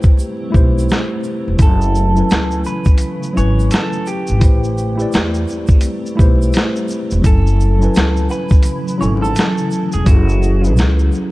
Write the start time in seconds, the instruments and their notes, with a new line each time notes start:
Already playing: ambient pad G3 A3 C4 E4, tine electric piano A3 E4 G4 B4 C5, clean electric guitar G4
0.03 kick, shaker
0.19 shaker
0.51 tine electric piano A3 E4 G4, kick
0.55 upright bass B1, tine electric piano B4 C5, shaker
0.79 shaker
0.89 snare, shaker
1.24 shaker
1.48 upright bass E1
1.57 upright bass F#1, ambient pad C#3 E3, tine electric piano F#3 C#4 E4, kick, closed hi-hat, shaker
1.61 clean electric guitar A4, tine electric piano A4 G#5, shaker
1.81 shaker
1.95 shaker
2.14 tine electric piano F#3 C#4 E4, shaker
2.18 tine electric piano B4 G#5
2.30 upright bass C#2, snare, closed hi-hat, shaker
2.51 shaker
2.64 clean electric guitar B4, shaker
2.67 shaker
2.85 kick, shaker
2.86 shaker
2.98 closed hi-hat, shaker
3.01 shaker
3.23 shaker
3.33 upright bass G#1, tine electric piano F#3 C#4 E4
3.37 tine electric piano B4 G#5, clean electric guitar C#5, shaker
3.60 shaker
3.71 clean electric guitar A4, snare, closed hi-hat, shaker
3.93 shaker
4.06 clean electric guitar G4, shaker
4.27 upright bass G#1, shaker
4.39 upright bass A1, ambient pad G3 C4, tine electric piano A3 E4 G4, kick, closed hi-hat, shaker
4.43 tine electric piano B4 C5, shaker
4.64 shaker
4.78 shaker
4.96 tine electric piano A3 E4 G4, shaker
5.00 tine electric piano B4 D5
5.12 upright bass E2, closed hi-hat, shaker
5.14 snare, shaker
5.34 shaker
5.48 shaker
5.50 shaker
5.67 kick, shaker
5.70 shaker
5.81 closed hi-hat, shaker
5.83 shaker
6.06 shaker
6.16 tine electric piano A3 E4 G4, kick, shaker
6.20 upright bass B1, tine electric piano B4 C5, shaker
6.42 shaker
6.53 snare, closed hi-hat, shaker
6.76 shaker
6.88 shaker
6.90 shaker
7.11 upright bass E1, shaker
7.21 upright bass F#1, ambient pad C#3 E3 F#3 E4, tine electric piano F#3 C#4 E4, kick, closed hi-hat, shaker
7.25 clean electric guitar A4, tine electric piano A4 G#5
7.47 shaker
7.60 shaker
7.79 tine electric piano F#3 C#4 E4 G#5, shaker
7.84 tine electric piano B4
7.94 closed hi-hat, shaker
7.96 upright bass C#2, snare, shaker
8.16 shaker
8.29 clean electric guitar B4, shaker
8.32 shaker
8.49 kick, shaker
8.52 shaker
8.63 closed hi-hat, shaker
8.65 shaker
8.88 shaker
8.98 upright bass G#1, tine electric piano F#3 C#4 E4, clean electric guitar C#5, shaker
9.02 tine electric piano A4 G#5, shaker
9.22 clean electric guitar A4, shaker
9.36 snare, closed hi-hat, shaker
9.58 shaker
9.71 shaker
9.92 upright bass E1, clean electric guitar G#4, shaker
10.04 upright bass F#1, tine electric piano F#3 C#4 E4, clean electric guitar F#4, kick, closed hi-hat, shaker
10.09 tine electric piano G#4 A4
10.29 shaker
10.43 shaker
10.61 tine electric piano F#3 C#4 E4, shaker
10.65 tine electric piano G#4 B4
10.77 upright bass C#2, closed hi-hat, shaker
10.79 snare, shaker
10.99 shaker
11.12 shaker
11.14 shaker